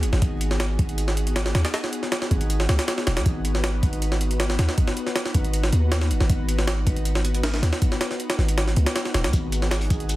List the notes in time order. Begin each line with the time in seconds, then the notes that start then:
Already playing: B3 D#4 F#4 G#4
0.03 F#1, closed hi-hat
0.13 G#1, snare
0.22 G#1, kick, closed hi-hat
0.41 closed hi-hat
0.51 snare
0.60 snare, closed hi-hat
0.79 G#1, kick, closed hi-hat
0.89 closed hi-hat
0.98 closed hi-hat
1.08 snare
1.17 closed hi-hat
1.27 closed hi-hat
1.36 snare, closed hi-hat
1.46 snare
1.55 D#2, snare, closed hi-hat
1.65 snare, closed hi-hat
1.74 snare, closed hi-hat
1.84 snare
1.93 closed hi-hat
2.03 snare
2.12 snare, closed hi-hat
2.22 snare
2.31 G#1, kick, closed hi-hat
2.41 closed hi-hat
2.50 closed hi-hat
2.60 snare
2.69 C#2, snare, closed hi-hat
2.79 snare, closed hi-hat
2.88 snare, closed hi-hat
2.98 snare
3.07 D#1, snare, closed hi-hat
3.17 D#2, snare, closed hi-hat
3.26 G#1 B4, kick, closed hi-hat
3.45 closed hi-hat
3.55 snare
3.64 snare, closed hi-hat
3.83 G#1, kick, closed hi-hat
3.93 closed hi-hat
4.02 closed hi-hat
4.12 snare
4.21 closed hi-hat
4.31 closed hi-hat
4.40 snare, closed hi-hat
4.50 snare
4.59 D#2, snare, closed hi-hat
4.69 snare
4.78 kick, closed hi-hat
4.88 snare
4.97 closed hi-hat
5.07 snare
5.16 snare, closed hi-hat
5.26 snare
5.34 G#1, kick, closed hi-hat
5.45 closed hi-hat
5.54 closed hi-hat
5.64 snare
5.72 D#2, closed hi-hat
5.92 snare, closed hi-hat
6.01 snare
6.11 F#1, closed hi-hat
6.20 G#1, snare
6.29 G#1, kick, closed hi-hat
6.49 closed hi-hat
6.59 snare
6.67 snare, closed hi-hat
6.87 G#1, kick, closed hi-hat
6.96 closed hi-hat
7.05 closed hi-hat
7.15 snare
7.25 closed hi-hat
7.35 closed hi-hat
7.43 snare, closed hi-hat
7.54 snare
7.63 D#2, snare, closed hi-hat
7.73 snare
7.82 kick, closed hi-hat
7.92 snare
8.01 snare, closed hi-hat
8.11 snare
8.20 closed hi-hat
8.30 snare, closed hi-hat
8.38 G#1, snare
8.48 closed hi-hat
8.58 snare, closed hi-hat
8.67 snare
8.76 C#2, closed hi-hat
8.86 snare, closed hi-hat
8.96 snare, closed hi-hat
9.05 snare
9.14 D#1, snare, closed hi-hat
9.24 D#2, snare, closed hi-hat
9.33 G#1 G#4, kick, closed hi-hat, shaker
9.52 closed hi-hat, shaker
9.62 snare
9.71 snare, closed hi-hat, shaker
9.81 closed hi-hat
9.90 G#1, kick, closed hi-hat, shaker
10.00 closed hi-hat
10.09 closed hi-hat, shaker